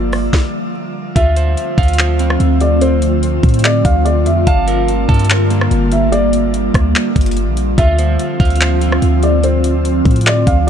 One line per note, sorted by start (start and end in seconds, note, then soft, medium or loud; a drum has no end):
0.00 0.30 G1 loud
0.00 0.31 D3 medium
0.00 0.31 F3 medium
0.00 0.31 G3 medium
0.00 0.31 A#3 medium
0.00 0.75 A#3 medium
0.00 0.31 F4 medium
0.00 0.70 D5 loud
0.13 cross-stick medium
0.13 open hi-hat soft
0.33 kick loud
0.33 snare medium
1.16 1.56 D2 loud
1.16 10.70 D3 medium
1.16 4.44 F3 medium
1.16 4.44 A3 medium
1.16 4.44 C4 medium
1.16 2.40 F4 loud
1.16 7.74 F4 medium
1.16 1.95 E5 loud
1.16 kick loud
1.16 closed hi-hat medium
1.36 1.97 C5 medium
1.36 closed hi-hat medium
1.57 closed hi-hat medium
1.78 2.37 D2 loud
1.78 3.02 F5 loud
1.78 kick loud
1.78 closed hi-hat soft
1.83 closed hi-hat soft
1.88 closed hi-hat medium
1.93 closed hi-hat medium
1.99 3.23 C5 medium
1.99 clap loud
1.99 closed hi-hat medium
2.19 2.80 C4 medium
2.19 closed hi-hat medium
2.30 cross-stick loud
2.40 3.40 D2 loud
2.40 closed hi-hat medium
2.60 2.81 D5 medium
2.60 closed hi-hat medium
2.81 4.06 C4 medium
2.81 3.60 C5 loud
2.81 closed hi-hat medium
3.02 closed hi-hat medium
3.23 closed hi-hat medium
3.43 3.83 A2 loud
3.43 kick loud
3.43 closed hi-hat soft
3.49 closed hi-hat soft
3.54 closed hi-hat medium
3.59 closed hi-hat medium
3.64 3.84 D5 loud
3.64 clap loud
3.64 closed hi-hat medium
3.85 4.28 D2 loud
3.85 4.04 F5 medium
3.85 kick loud
3.85 closed hi-hat medium
4.05 4.25 D5 medium
4.05 closed hi-hat medium
4.26 4.46 F2 loud
4.26 4.46 E5 medium
4.26 closed hi-hat medium
4.47 5.07 G1 loud
4.47 7.75 G3 medium
4.47 7.75 A#3 medium
4.47 5.26 F5 loud
4.47 5.07 A5 loud
4.47 kick loud
4.47 closed hi-hat medium
4.68 5.29 A#4 medium
4.68 closed hi-hat medium
4.88 closed hi-hat medium
5.09 5.69 G2 loud
5.09 6.33 A5 loud
5.09 kick loud
5.09 closed hi-hat soft
5.14 closed hi-hat soft
5.19 closed hi-hat medium
5.25 closed hi-hat medium
5.30 6.54 A#4 medium
5.30 clap loud
5.30 closed hi-hat medium
5.50 6.12 A#3 medium
5.50 closed hi-hat medium
5.61 cross-stick loud
5.71 6.71 G1 loud
5.71 closed hi-hat medium
5.92 6.12 E5 medium
5.92 closed hi-hat medium
6.12 7.37 A#3 medium
6.12 7.32 D5 loud
6.12 closed hi-hat medium
6.33 closed hi-hat medium
6.54 closed hi-hat medium
6.74 6.94 D2 loud
6.74 kick loud
6.74 cross-stick loud
6.74 closed hi-hat medium
6.96 clap loud
6.96 closed hi-hat medium
7.16 7.49 G1 loud
7.16 kick loud
7.16 closed hi-hat medium
7.21 closed hi-hat medium
7.26 closed hi-hat medium
7.31 closed hi-hat medium
7.37 closed hi-hat medium
7.47 7.77 A#1 loud
7.57 closed hi-hat medium
7.78 8.18 D2 loud
7.78 10.70 F3 medium
7.78 10.70 C4 medium
7.78 9.02 F4 loud
7.78 10.70 F4 medium
7.78 8.57 E5 loud
7.78 kick loud
7.78 closed hi-hat medium
7.99 8.60 C5 medium
7.99 closed hi-hat medium
8.19 closed hi-hat medium
8.40 9.00 D2 loud
8.40 9.64 F5 loud
8.40 kick loud
8.40 closed hi-hat soft
8.45 closed hi-hat soft
8.50 closed hi-hat medium
8.56 closed hi-hat medium
8.61 9.85 C5 medium
8.61 clap loud
8.61 closed hi-hat medium
8.81 9.43 C4 medium
8.81 closed hi-hat medium
8.92 cross-stick loud
9.02 10.02 D2 loud
9.02 closed hi-hat medium
9.23 9.43 D5 medium
9.23 closed hi-hat medium
9.44 10.68 C4 medium
9.44 10.22 C5 medium
9.44 closed hi-hat medium
9.64 closed hi-hat medium
9.85 closed hi-hat medium
10.05 10.45 A2 loud
10.05 kick loud
10.05 closed hi-hat soft
10.11 closed hi-hat medium
10.16 closed hi-hat medium
10.21 closed hi-hat medium
10.27 10.46 D5 medium
10.27 clap loud
10.27 closed hi-hat medium
10.47 10.70 D2 loud
10.47 10.67 F5 medium
10.47 kick medium
10.47 closed hi-hat medium